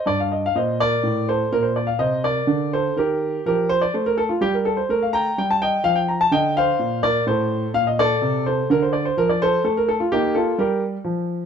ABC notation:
X:1
M:12/8
L:1/16
Q:3/8=84
K:Gm
V:1 name="Grand piano"
d f e f [ce]2 [Bd]4 [Ac]2 B c d f [ce]2 [Bd]4 [Ac]2 | [GB]4 [GB]2 c d c B A F G B A c B f [gb]2 g a [eg]2 | f g b a [eg]2 [cf]4 [Bd]2 [Ac]4 f e [Ad]4 [Ac]2 | B c d c B d [Ac]2 A B A F [EG]2 [FA]2 [GB]2 z6 |]
V:2 name="Grand piano" clef=bass
G,,4 B,,4 A,,4 B,,4 C,4 D,4 | E,4 F,4 A,4 G,4 A,4 G,4 | F,4 D,4 B,,4 A,,4 B,,4 C,4 | D,4 F,4 A,4 B,4 G,4 F,4 |]